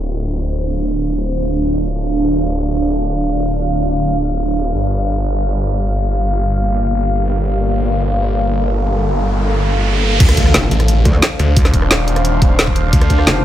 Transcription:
Already playing: D1 D4 C5 F5
2.02 D5
4.75 G1 A#3 G4
7.47 A4, riser
10.20 D2 D4 C5 F5, kick, closed hi-hat, crash, impact
10.29 cross-stick, closed hi-hat
10.37 kick, closed hi-hat
10.46 cross-stick
10.54 F1, snare, closed hi-hat
10.71 A1, closed hi-hat
10.80 cross-stick, closed hi-hat
10.88 closed hi-hat
11.05 D2, kick, closed hi-hat
11.22 snare, closed hi-hat
11.39 D2, closed hi-hat
11.57 kick, closed hi-hat
11.65 cross-stick, snare, closed hi-hat
11.74 D#1, kick, closed hi-hat
11.82 cross-stick
11.91 snare, closed hi-hat
12.08 closed hi-hat
12.16 cross-stick, closed hi-hat
12.25 closed hi-hat
12.42 kick, closed hi-hat
12.59 snare, closed hi-hat
12.67 kick
12.76 closed hi-hat
12.93 D2, kick, closed hi-hat
13.01 cross-stick, closed hi-hat
13.10 kick, closed hi-hat
13.19 cross-stick
13.27 F1, snare, closed hi-hat

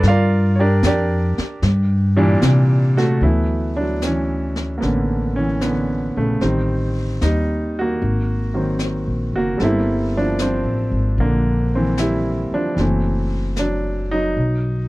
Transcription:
0.03 G2, brush sweep, snare
0.08 F4 A#4 D5 F5
0.55 G4 C#5
0.60 D4 A#4 D5
0.83 F2 G4 A#4, snare, hi-hat pedal
0.87 D4 D5
1.38 muted upright bass stroke, snare
1.62 G2, brush sweep, snare
2.16 A#2 E3 G3 D4
2.42 C3, snare, hi-hat pedal
2.97 A3 F#4, snare
3.21 D2 E3 F#3 A3 B3 E4, brush sweep
3.77 F#3 D4
4.02 C#4, snare, hi-hat pedal
4.06 E3
4.56 snare
4.78 A3 A#3 B3, brush sweep, snare
4.83 A1 D3 B3 C#4
5.36 E3 C#4
5.61 D3 B3, snare, hi-hat pedal
6.16 A#1 C#3 A3
6.41 A1 D#3 G3 C4 D#4, brush sweep, snare
7.21 D#2 G3 D#4, snare, hi-hat pedal
7.79 A#3 F#4
8.01 G#1, brush sweep
8.54 D#3 F#3 A#3 C4
8.79 snare, hi-hat pedal
9.07 A#1
9.33 F#1 F#4
9.37 A#3
9.57 G1 G3 A#3 A4, brush sweep, snare
9.62 G3 C4 E4
10.17 F3 D4
10.39 C4, snare, hi-hat pedal
10.45 F3
10.65 A1
10.91 G#1
11.18 A#1 A#3, brush sweep
11.22 D3
11.75 E3 C4
11.97 G3 E4, snare, hi-hat pedal
12.51 F3 D4, muted upright bass stroke
12.75 F#1 E3 F#3 A3, brush sweep, snare
12.80 E3 C4
13.56 D4, snare, hi-hat pedal
13.61 F#3
14.11 F#3 D#4
14.36 B1, brush sweep

